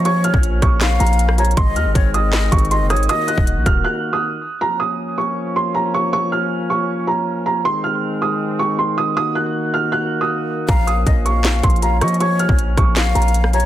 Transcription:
Already playing: F3 A#3 C#4
0.05 C#5 C#6, closed hi-hat
0.24 F6, closed hi-hat
0.34 A#1, kick
0.43 closed hi-hat
0.62 A#1 C#6, kick, cross-stick, closed hi-hat
0.81 F5, snare, clap, closed hi-hat
1.00 A#1 A#5, closed hi-hat
1.07 closed hi-hat
1.13 closed hi-hat
1.19 closed hi-hat
1.29 cross-stick
1.38 C#5 A#5, closed hi-hat
1.45 closed hi-hat
1.51 closed hi-hat
1.57 G#1 D#3 G#3 C4 D#5 C6, kick, closed hi-hat
1.76 D#2 F6, closed hi-hat
1.86 G#1
1.95 G#1 C#5, kick, closed hi-hat
2.14 D#5 D#6, closed hi-hat
2.33 snare, clap, closed hi-hat
2.52 G#1 C#6, kick, closed hi-hat
2.58 closed hi-hat
2.65 closed hi-hat
2.71 D#5 C6, closed hi-hat
2.81 F#1
2.90 C#5 D#6, cross-stick, closed hi-hat
2.95 G#1, closed hi-hat
3.03 closed hi-hat
3.09 A#3 F#4 D#5 D#6, closed hi-hat
3.28 F#6, closed hi-hat
3.38 D#1, kick
3.47 closed hi-hat
3.56 A#1
3.66 D#1 F6, kick, cross-stick, closed hi-hat
3.84 F#6
4.13 D#6
4.61 F3 A#3 C#4 A#5
4.80 D#6
5.18 C#6
5.56 C6
5.75 A#5
5.94 C#6
6.13 C#6
6.32 F6
6.70 C#6
7.07 A#5
7.46 A#5
7.65 D#3 G#3 C4 C6
7.84 F6
8.22 D#6
8.59 C#6
8.79 C6
8.98 D#6
9.17 A#3 F#4 D#6
9.35 F#6
9.74 F6
9.92 F#6
10.21 D#6
10.68 A#1 F3 C#4 F5 A#5, kick, closed hi-hat
10.87 D#6, closed hi-hat
11.06 A#1 D#5, kick, closed hi-hat
11.25 F5 C#6, closed hi-hat
11.44 snare, clap, closed hi-hat
11.63 A#1 C6, kick, closed hi-hat
11.70 closed hi-hat
11.76 closed hi-hat
11.82 F5 A#5, closed hi-hat
12.01 F3 D#5 C#6, cross-stick, closed hi-hat
12.08 closed hi-hat
12.14 closed hi-hat
12.20 C#5 C#6, closed hi-hat
12.39 F6, closed hi-hat
12.49 A#1, kick
12.59 closed hi-hat
12.77 A#1 C#6, kick, cross-stick, closed hi-hat
12.96 F5, snare, clap, closed hi-hat
13.15 A#1 A#5, closed hi-hat
13.22 closed hi-hat
13.28 closed hi-hat
13.34 closed hi-hat
13.44 cross-stick
13.53 C#5 A#5, closed hi-hat
13.60 closed hi-hat

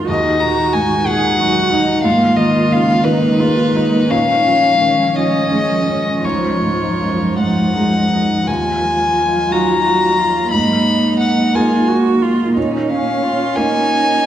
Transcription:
Already playing: F#2 G#2 D#3 G#3 D#4
0.07 D#2 D#4 F#4 D#5 A#5
0.40 A#2 D#4 A#5
0.73 G#2 D#4 G#5
1.05 A#2 D#4 G#4 F#5
1.39 F#3 D#4 F#4
1.71 D#4
2.04 G#2 G#3 A#3 F4 F5
2.37 D#3 A#3 D#5
2.71 C#3 A#3 F5
3.04 D#3 A#3 D#4 B4
3.40 G#3 A#3 F4
3.75 A#3 D#4
4.11 A#2 F3 C#4 C#5 F5
4.46 F3 C#4
4.81 D#3 C#4
5.16 F3 C#4 D#5
5.51 G#3 C#4
5.86 C#4
6.22 C#2 D#4 F4 C#5
6.26 D#5
6.60 G#2 D#4
6.99 F#2 D#4
7.38 G#2 D#4 F#5
7.75 G#3 D#4
8.11 D#4
8.47 D#2 F#3 F4 D#5 F5 G#5
9.51 F#3 D#4 F#4 F5 A#5
9.85 F#4
10.19 F4
10.52 G#2 A#3 D#4 B5
11.21 F#5
11.55 A#3 D#4 F4 G#4 G#5
11.88 F#4
12.22 F4
12.56 A#2 C#4 D#4 C#5 F5
12.91 C#4 F5
13.24 F4
13.56 A#3 C#4 D#4 F4 G#5

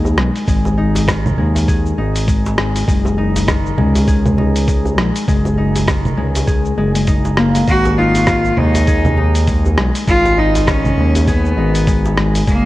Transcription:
Already playing: D#2 D#3 G#3 D#4 G#4
0.05 djembe tone, djembe bass, shaker
0.18 B1 G#3, cross-stick, djembe slap
0.36 open hi-hat, shaker
0.48 G#1 G#3, kick, open hi-hat, shaker
0.65 djembe slap, djembe bass, shaker
0.78 D#4
0.95 open hi-hat, djembe slap, djembe tone, shaker
1.08 D#3, kick, cross-stick, open hi-hat, djembe bass, shaker
1.26 low conga, shaker
1.38 D#2 G#3
1.55 open hi-hat, djembe tone, shaker
1.68 G#4, kick, open hi-hat, shaker
1.86 shaker
1.98 G#1 D#4
2.16 open hi-hat, shaker
2.28 G#3, kick, open hi-hat, shaker
2.46 djembe slap, shaker
2.58 G#3, cross-stick, djembe tone
2.76 open hi-hat, djembe slap, shaker
2.88 F#1 G#3, kick, open hi-hat, shaker
3.05 djembe slap, djembe bass, shaker
3.17 D#4
3.36 open hi-hat, djembe slap, djembe tone, shaker
3.48 D#3, kick, cross-stick, open hi-hat, djembe bass, shaker
3.66 shaker
3.78 C#2 G#3, low conga
3.95 open hi-hat, djembe tone, shaker
4.08 G#4, kick, open hi-hat, shaker
4.26 low conga, shaker
4.38 D#4, djembe tone
4.56 open hi-hat, shaker
4.68 G#3, kick, open hi-hat, shaker
4.85 djembe tone, djembe bass, shaker
4.97 A#1 G#3, cross-stick, djembe slap
5.15 open hi-hat, shaker
5.28 F#1 G#3, kick, open hi-hat, shaker
5.45 djembe slap, djembe bass, shaker
5.58 D#4
5.76 open hi-hat, djembe slap, djembe tone, shaker
5.88 D#3, kick, cross-stick, open hi-hat, djembe bass, shaker
6.05 low conga, shaker
6.17 C#2 G#3
6.35 open hi-hat, djembe tone, shaker
6.47 G#4, kick, open hi-hat, shaker
6.65 shaker
6.78 F#1 G#3
6.95 G#3, open hi-hat, shaker
7.07 D#4, kick, open hi-hat, shaker
7.25 djembe slap, shaker
7.37 A#3, cross-stick, djembe tone
7.55 G#3, open hi-hat, djembe slap, shaker
7.68 G#1 G#3 F#4, kick, open hi-hat, shaker
7.85 djembe slap, djembe bass, shaker
7.98 D#4 F4
8.15 open hi-hat, djembe slap, djembe tone, shaker
8.27 D#3, kick, cross-stick, open hi-hat, djembe bass, shaker
8.45 shaker
8.57 D#2 G#3 D#4, low conga
8.75 open hi-hat, djembe tone, shaker
8.87 G#4, kick, open hi-hat, shaker
9.05 low conga, shaker
9.17 D#4, djembe tone
9.35 open hi-hat, shaker
9.47 G#3, kick, open hi-hat, shaker
9.65 djembe tone, djembe bass, shaker
9.77 B1 G#3, cross-stick, djembe slap
9.95 open hi-hat, shaker
10.07 G#1 G#3 F4, kick, open hi-hat, shaker
10.25 djembe slap, djembe bass, shaker
10.37 D#4
10.55 open hi-hat, djembe slap, djembe tone, shaker
10.67 D#3 C#4, kick, cross-stick, open hi-hat, djembe bass, shaker
10.85 low conga, shaker
10.97 D#2 G#3
11.15 open hi-hat, djembe tone, shaker
11.27 B3 G#4, kick, open hi-hat, shaker
11.46 shaker
11.57 G#1 D#4
11.75 open hi-hat, shaker
11.87 G#3, kick, open hi-hat, shaker
12.05 djembe slap, shaker
12.18 G#3, cross-stick, djembe tone
12.35 open hi-hat, djembe slap, shaker
12.47 F#1 G#3 A#3, kick, open hi-hat, shaker

